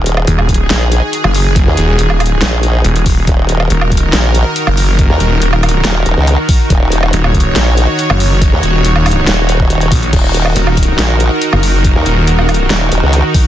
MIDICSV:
0, 0, Header, 1, 5, 480
1, 0, Start_track
1, 0, Key_signature, -6, "minor"
1, 0, Tempo, 428571
1, 1746, Time_signature, 4, 2, 24, 8
1, 15086, End_track
2, 0, Start_track
2, 0, Title_t, "Supersaw synth"
2, 0, Program_c, 0, 81
2, 0, Note_on_c, 0, 51, 87
2, 0, Note_on_c, 0, 63, 80
2, 0, Note_on_c, 0, 66, 80
2, 0, Note_on_c, 0, 68, 95
2, 3653, Note_off_c, 0, 68, 0
2, 3667, Note_on_c, 0, 70, 94
2, 7492, Note_off_c, 0, 70, 0
2, 7505, Note_on_c, 0, 73, 96
2, 11332, Note_off_c, 0, 73, 0
2, 11345, Note_on_c, 0, 70, 101
2, 15086, Note_off_c, 0, 51, 0
2, 15086, Note_off_c, 0, 63, 0
2, 15086, Note_off_c, 0, 66, 0
2, 15086, Note_off_c, 0, 70, 0
2, 15086, End_track
3, 0, Start_track
3, 0, Title_t, "Wobble bass"
3, 0, Program_c, 1, 39
3, 0, Note_on_c, 1, 27, 97
3, 288, Note_off_c, 1, 27, 0
3, 785, Note_on_c, 1, 34, 100
3, 1130, Note_off_c, 1, 34, 0
3, 1870, Note_on_c, 1, 39, 101
3, 1967, Note_off_c, 1, 39, 0
3, 2705, Note_on_c, 1, 34, 96
3, 3167, Note_off_c, 1, 34, 0
3, 3666, Note_on_c, 1, 27, 97
3, 4127, Note_off_c, 1, 27, 0
3, 4625, Note_on_c, 1, 34, 102
3, 4970, Note_off_c, 1, 34, 0
3, 5711, Note_on_c, 1, 39, 102
3, 5808, Note_off_c, 1, 39, 0
3, 6545, Note_on_c, 1, 27, 101
3, 6767, Note_off_c, 1, 27, 0
3, 6785, Note_on_c, 1, 27, 96
3, 6890, Note_off_c, 1, 27, 0
3, 6911, Note_on_c, 1, 37, 96
3, 7130, Note_off_c, 1, 37, 0
3, 7506, Note_on_c, 1, 27, 94
3, 7967, Note_off_c, 1, 27, 0
3, 8466, Note_on_c, 1, 34, 98
3, 8810, Note_off_c, 1, 34, 0
3, 9551, Note_on_c, 1, 39, 101
3, 9647, Note_off_c, 1, 39, 0
3, 10385, Note_on_c, 1, 27, 98
3, 11087, Note_off_c, 1, 27, 0
3, 11345, Note_on_c, 1, 27, 96
3, 11807, Note_off_c, 1, 27, 0
3, 12306, Note_on_c, 1, 34, 99
3, 12651, Note_off_c, 1, 34, 0
3, 13390, Note_on_c, 1, 39, 100
3, 13487, Note_off_c, 1, 39, 0
3, 14225, Note_on_c, 1, 27, 99
3, 14447, Note_off_c, 1, 27, 0
3, 14466, Note_on_c, 1, 27, 102
3, 14571, Note_off_c, 1, 27, 0
3, 14591, Note_on_c, 1, 37, 102
3, 14811, Note_off_c, 1, 37, 0
3, 15086, End_track
4, 0, Start_track
4, 0, Title_t, "Detuned saw bass"
4, 0, Program_c, 2, 39
4, 307, Note_on_c, 2, 27, 102
4, 768, Note_off_c, 2, 27, 0
4, 1392, Note_on_c, 2, 30, 99
4, 1851, Note_off_c, 2, 30, 0
4, 1987, Note_on_c, 2, 27, 99
4, 2208, Note_off_c, 2, 27, 0
4, 2226, Note_on_c, 2, 27, 99
4, 2688, Note_off_c, 2, 27, 0
4, 3186, Note_on_c, 2, 27, 99
4, 3647, Note_off_c, 2, 27, 0
4, 4147, Note_on_c, 2, 27, 98
4, 4608, Note_off_c, 2, 27, 0
4, 5230, Note_on_c, 2, 30, 97
4, 5690, Note_off_c, 2, 30, 0
4, 5826, Note_on_c, 2, 27, 99
4, 6047, Note_off_c, 2, 27, 0
4, 6066, Note_on_c, 2, 27, 103
4, 6528, Note_off_c, 2, 27, 0
4, 7986, Note_on_c, 2, 27, 98
4, 8448, Note_off_c, 2, 27, 0
4, 9071, Note_on_c, 2, 30, 101
4, 9531, Note_off_c, 2, 30, 0
4, 9666, Note_on_c, 2, 27, 101
4, 9887, Note_off_c, 2, 27, 0
4, 9906, Note_on_c, 2, 27, 98
4, 10367, Note_off_c, 2, 27, 0
4, 11106, Note_on_c, 2, 34, 97
4, 11327, Note_off_c, 2, 34, 0
4, 11827, Note_on_c, 2, 27, 102
4, 12288, Note_off_c, 2, 27, 0
4, 12910, Note_on_c, 2, 30, 100
4, 13370, Note_off_c, 2, 30, 0
4, 13507, Note_on_c, 2, 27, 100
4, 13728, Note_off_c, 2, 27, 0
4, 13746, Note_on_c, 2, 27, 97
4, 14207, Note_off_c, 2, 27, 0
4, 15086, End_track
5, 0, Start_track
5, 0, Title_t, "Drums"
5, 67, Note_on_c, 9, 42, 57
5, 179, Note_off_c, 9, 42, 0
5, 192, Note_on_c, 9, 77, 61
5, 304, Note_off_c, 9, 77, 0
5, 306, Note_on_c, 9, 42, 80
5, 418, Note_off_c, 9, 42, 0
5, 431, Note_on_c, 9, 77, 53
5, 543, Note_off_c, 9, 77, 0
5, 546, Note_on_c, 9, 36, 68
5, 546, Note_on_c, 9, 42, 53
5, 609, Note_off_c, 9, 42, 0
5, 609, Note_on_c, 9, 42, 68
5, 658, Note_off_c, 9, 36, 0
5, 721, Note_off_c, 9, 42, 0
5, 786, Note_on_c, 9, 38, 127
5, 786, Note_on_c, 9, 42, 86
5, 898, Note_off_c, 9, 38, 0
5, 898, Note_off_c, 9, 42, 0
5, 1026, Note_on_c, 9, 42, 53
5, 1138, Note_off_c, 9, 42, 0
5, 1266, Note_on_c, 9, 42, 80
5, 1378, Note_off_c, 9, 42, 0
5, 1391, Note_on_c, 9, 77, 81
5, 1503, Note_off_c, 9, 77, 0
5, 1506, Note_on_c, 9, 46, 90
5, 1618, Note_off_c, 9, 46, 0
5, 1746, Note_on_c, 9, 36, 127
5, 1746, Note_on_c, 9, 42, 80
5, 1858, Note_off_c, 9, 36, 0
5, 1858, Note_off_c, 9, 42, 0
5, 1986, Note_on_c, 9, 42, 51
5, 2098, Note_off_c, 9, 42, 0
5, 2226, Note_on_c, 9, 42, 81
5, 2338, Note_off_c, 9, 42, 0
5, 2351, Note_on_c, 9, 77, 55
5, 2463, Note_off_c, 9, 77, 0
5, 2466, Note_on_c, 9, 42, 50
5, 2466, Note_on_c, 9, 77, 65
5, 2528, Note_off_c, 9, 42, 0
5, 2528, Note_on_c, 9, 42, 67
5, 2578, Note_off_c, 9, 77, 0
5, 2640, Note_off_c, 9, 42, 0
5, 2706, Note_on_c, 9, 38, 127
5, 2706, Note_on_c, 9, 42, 83
5, 2818, Note_off_c, 9, 38, 0
5, 2818, Note_off_c, 9, 42, 0
5, 2947, Note_on_c, 9, 42, 53
5, 3059, Note_off_c, 9, 42, 0
5, 3186, Note_on_c, 9, 42, 80
5, 3298, Note_off_c, 9, 42, 0
5, 3311, Note_on_c, 9, 42, 37
5, 3423, Note_off_c, 9, 42, 0
5, 3426, Note_on_c, 9, 36, 108
5, 3426, Note_on_c, 9, 46, 89
5, 3538, Note_off_c, 9, 36, 0
5, 3538, Note_off_c, 9, 46, 0
5, 3666, Note_on_c, 9, 36, 127
5, 3666, Note_on_c, 9, 42, 75
5, 3778, Note_off_c, 9, 36, 0
5, 3778, Note_off_c, 9, 42, 0
5, 3906, Note_on_c, 9, 42, 52
5, 4018, Note_off_c, 9, 42, 0
5, 4032, Note_on_c, 9, 77, 66
5, 4144, Note_off_c, 9, 77, 0
5, 4147, Note_on_c, 9, 42, 78
5, 4259, Note_off_c, 9, 42, 0
5, 4272, Note_on_c, 9, 77, 56
5, 4384, Note_off_c, 9, 77, 0
5, 4386, Note_on_c, 9, 36, 64
5, 4387, Note_on_c, 9, 42, 49
5, 4449, Note_off_c, 9, 42, 0
5, 4449, Note_on_c, 9, 42, 63
5, 4498, Note_off_c, 9, 36, 0
5, 4561, Note_off_c, 9, 42, 0
5, 4627, Note_on_c, 9, 38, 121
5, 4627, Note_on_c, 9, 42, 80
5, 4739, Note_off_c, 9, 38, 0
5, 4739, Note_off_c, 9, 42, 0
5, 4867, Note_on_c, 9, 42, 50
5, 4979, Note_off_c, 9, 42, 0
5, 5106, Note_on_c, 9, 42, 78
5, 5218, Note_off_c, 9, 42, 0
5, 5231, Note_on_c, 9, 77, 90
5, 5343, Note_off_c, 9, 77, 0
5, 5346, Note_on_c, 9, 46, 93
5, 5458, Note_off_c, 9, 46, 0
5, 5586, Note_on_c, 9, 36, 120
5, 5587, Note_on_c, 9, 42, 77
5, 5698, Note_off_c, 9, 36, 0
5, 5699, Note_off_c, 9, 42, 0
5, 5827, Note_on_c, 9, 42, 52
5, 5939, Note_off_c, 9, 42, 0
5, 6066, Note_on_c, 9, 42, 79
5, 6178, Note_off_c, 9, 42, 0
5, 6191, Note_on_c, 9, 77, 56
5, 6303, Note_off_c, 9, 77, 0
5, 6307, Note_on_c, 9, 42, 47
5, 6307, Note_on_c, 9, 77, 68
5, 6368, Note_off_c, 9, 42, 0
5, 6368, Note_on_c, 9, 42, 63
5, 6419, Note_off_c, 9, 77, 0
5, 6480, Note_off_c, 9, 42, 0
5, 6546, Note_on_c, 9, 38, 118
5, 6546, Note_on_c, 9, 42, 78
5, 6658, Note_off_c, 9, 38, 0
5, 6658, Note_off_c, 9, 42, 0
5, 6786, Note_on_c, 9, 42, 51
5, 6898, Note_off_c, 9, 42, 0
5, 7026, Note_on_c, 9, 42, 77
5, 7138, Note_off_c, 9, 42, 0
5, 7266, Note_on_c, 9, 36, 104
5, 7266, Note_on_c, 9, 46, 91
5, 7378, Note_off_c, 9, 36, 0
5, 7378, Note_off_c, 9, 46, 0
5, 7506, Note_on_c, 9, 36, 113
5, 7506, Note_on_c, 9, 42, 80
5, 7618, Note_off_c, 9, 36, 0
5, 7618, Note_off_c, 9, 42, 0
5, 7747, Note_on_c, 9, 42, 53
5, 7859, Note_off_c, 9, 42, 0
5, 7872, Note_on_c, 9, 77, 63
5, 7984, Note_off_c, 9, 77, 0
5, 7987, Note_on_c, 9, 42, 81
5, 8099, Note_off_c, 9, 42, 0
5, 8111, Note_on_c, 9, 77, 55
5, 8223, Note_off_c, 9, 77, 0
5, 8226, Note_on_c, 9, 36, 57
5, 8227, Note_on_c, 9, 42, 51
5, 8289, Note_off_c, 9, 42, 0
5, 8289, Note_on_c, 9, 42, 67
5, 8338, Note_off_c, 9, 36, 0
5, 8401, Note_off_c, 9, 42, 0
5, 8466, Note_on_c, 9, 38, 119
5, 8466, Note_on_c, 9, 42, 81
5, 8578, Note_off_c, 9, 38, 0
5, 8578, Note_off_c, 9, 42, 0
5, 8706, Note_on_c, 9, 42, 54
5, 8818, Note_off_c, 9, 42, 0
5, 8946, Note_on_c, 9, 42, 80
5, 9058, Note_off_c, 9, 42, 0
5, 9071, Note_on_c, 9, 77, 88
5, 9183, Note_off_c, 9, 77, 0
5, 9186, Note_on_c, 9, 46, 95
5, 9298, Note_off_c, 9, 46, 0
5, 9426, Note_on_c, 9, 36, 123
5, 9426, Note_on_c, 9, 42, 82
5, 9538, Note_off_c, 9, 36, 0
5, 9538, Note_off_c, 9, 42, 0
5, 9667, Note_on_c, 9, 42, 54
5, 9779, Note_off_c, 9, 42, 0
5, 9907, Note_on_c, 9, 42, 83
5, 10019, Note_off_c, 9, 42, 0
5, 10031, Note_on_c, 9, 77, 53
5, 10143, Note_off_c, 9, 77, 0
5, 10146, Note_on_c, 9, 46, 66
5, 10146, Note_on_c, 9, 77, 61
5, 10208, Note_on_c, 9, 42, 68
5, 10258, Note_off_c, 9, 46, 0
5, 10258, Note_off_c, 9, 77, 0
5, 10320, Note_off_c, 9, 42, 0
5, 10386, Note_on_c, 9, 38, 121
5, 10386, Note_on_c, 9, 42, 84
5, 10498, Note_off_c, 9, 38, 0
5, 10498, Note_off_c, 9, 42, 0
5, 10626, Note_on_c, 9, 42, 55
5, 10738, Note_off_c, 9, 42, 0
5, 10750, Note_on_c, 9, 36, 59
5, 10862, Note_off_c, 9, 36, 0
5, 10866, Note_on_c, 9, 42, 83
5, 10978, Note_off_c, 9, 42, 0
5, 10991, Note_on_c, 9, 42, 40
5, 11103, Note_off_c, 9, 42, 0
5, 11105, Note_on_c, 9, 36, 106
5, 11106, Note_on_c, 9, 46, 97
5, 11217, Note_off_c, 9, 36, 0
5, 11218, Note_off_c, 9, 46, 0
5, 11231, Note_on_c, 9, 42, 39
5, 11343, Note_off_c, 9, 42, 0
5, 11345, Note_on_c, 9, 36, 121
5, 11345, Note_on_c, 9, 42, 80
5, 11345, Note_on_c, 9, 49, 77
5, 11457, Note_off_c, 9, 36, 0
5, 11457, Note_off_c, 9, 42, 0
5, 11457, Note_off_c, 9, 49, 0
5, 11585, Note_on_c, 9, 42, 57
5, 11697, Note_off_c, 9, 42, 0
5, 11710, Note_on_c, 9, 77, 59
5, 11822, Note_off_c, 9, 77, 0
5, 11825, Note_on_c, 9, 42, 88
5, 11937, Note_off_c, 9, 42, 0
5, 11950, Note_on_c, 9, 77, 50
5, 12062, Note_off_c, 9, 77, 0
5, 12065, Note_on_c, 9, 42, 53
5, 12066, Note_on_c, 9, 36, 65
5, 12127, Note_off_c, 9, 42, 0
5, 12127, Note_on_c, 9, 42, 70
5, 12178, Note_off_c, 9, 36, 0
5, 12239, Note_off_c, 9, 42, 0
5, 12305, Note_on_c, 9, 38, 122
5, 12305, Note_on_c, 9, 42, 84
5, 12417, Note_off_c, 9, 38, 0
5, 12417, Note_off_c, 9, 42, 0
5, 12545, Note_on_c, 9, 42, 58
5, 12657, Note_off_c, 9, 42, 0
5, 12785, Note_on_c, 9, 42, 85
5, 12897, Note_off_c, 9, 42, 0
5, 12911, Note_on_c, 9, 77, 82
5, 13023, Note_off_c, 9, 77, 0
5, 13026, Note_on_c, 9, 46, 98
5, 13138, Note_off_c, 9, 46, 0
5, 13266, Note_on_c, 9, 36, 127
5, 13266, Note_on_c, 9, 42, 88
5, 13378, Note_off_c, 9, 36, 0
5, 13378, Note_off_c, 9, 42, 0
5, 13507, Note_on_c, 9, 42, 56
5, 13619, Note_off_c, 9, 42, 0
5, 13747, Note_on_c, 9, 42, 85
5, 13859, Note_off_c, 9, 42, 0
5, 13871, Note_on_c, 9, 77, 49
5, 13983, Note_off_c, 9, 77, 0
5, 13987, Note_on_c, 9, 42, 54
5, 13987, Note_on_c, 9, 77, 62
5, 14049, Note_off_c, 9, 42, 0
5, 14049, Note_on_c, 9, 42, 71
5, 14099, Note_off_c, 9, 77, 0
5, 14161, Note_off_c, 9, 42, 0
5, 14226, Note_on_c, 9, 38, 127
5, 14226, Note_on_c, 9, 42, 85
5, 14338, Note_off_c, 9, 38, 0
5, 14338, Note_off_c, 9, 42, 0
5, 14466, Note_on_c, 9, 42, 57
5, 14578, Note_off_c, 9, 42, 0
5, 14706, Note_on_c, 9, 42, 85
5, 14818, Note_off_c, 9, 42, 0
5, 14946, Note_on_c, 9, 36, 115
5, 14946, Note_on_c, 9, 46, 100
5, 15058, Note_off_c, 9, 36, 0
5, 15058, Note_off_c, 9, 46, 0
5, 15086, End_track
0, 0, End_of_file